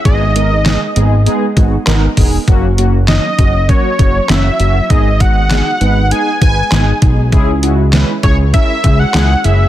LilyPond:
<<
  \new Staff \with { instrumentName = "Analog synth lead" } { \time 4/4 \key gis \minor \tempo 4 = 99 dis''2 r2 | r4 dis''4 cis''4 e''4 | dis''8 fis''4. gis''8 gis''4 r8 | r4. cis''8 e''8. fis''8. e''8 | }
  \new Staff \with { instrumentName = "Analog polysynth" } { \time 4/4 \key gis \minor <gis b dis' gis'>8 <gis b dis' ais'>8 <gis b dis' gis'>8 <gis b dis' gis'>8 <gis b dis' gis'>8 <gis b dis' fis'>8 <gis b dis' ais'>8 <gis b dis' gis'>8 | <fis ais cis' fis'>8 <fis ais cis' fis'>8 <fis ais cis' dis'>8 <fis ais cis' fis'>8 <fis ais cis' fis'>8 <fis ais cis' fis'>8 <fis ais cis' fis'>8 <fis ais cis' fis'>8 | <gis b dis' gis'>8 <gis b dis' fis'>8 <gis b dis' gis'>8 <gis b dis' b'>8 <gis b dis' gis'>8 <gis b dis' b'>8 <gis b dis' gis'>8 <gis b dis' gis'>8 | <gis cis' e' gis'>8 <gis cis' e' fis'>8 <gis cis' e' b'>8 <gis cis' e' gis'>8 <gis cis' e' ais'>8 <gis cis' e' gis'>8 <gis cis' e' gis'>8 <gis cis' e' gis'>8 | }
  \new Staff \with { instrumentName = "Analog synth bass" } { \clef bass \time 4/4 \key gis \minor gis,,4~ gis,,16 r16 gis,,8. r16 gis,,8 gis,,8 e,,8 | fis,,4~ fis,,16 r16 fis,,8. r16 fis,,8 fis,,8 fis,,8 | gis,,4~ gis,,16 r16 gis,,8. r16 gis,,8 gis,,8 b,,8 | cis,4~ cis,16 r16 cis,8. r16 cis,8 cis,8 fis,,8 | }
  \new DrumStaff \with { instrumentName = "Drums" } \drummode { \time 4/4 <hh bd>8 hh8 <hc hh sn>8 hh8 hh8 <hh bd>8 <hc hh sn>8 <hho bd>8 | <hh bd>8 hh8 <hc hh sn>8 <hh bd>8 <hh bd>8 <hh bd>8 <hc hh sn>8 hh8 | <hh bd>8 <hh bd>8 <hc hh sn>8 hh8 hh8 <hh bd>8 <hc hh sn>8 <hh bd>8 | <hh bd>8 hh8 <hc hh sn>8 <hh bd>8 <hh bd>8 <hh bd>8 <hc hh sn>8 hh8 | }
>>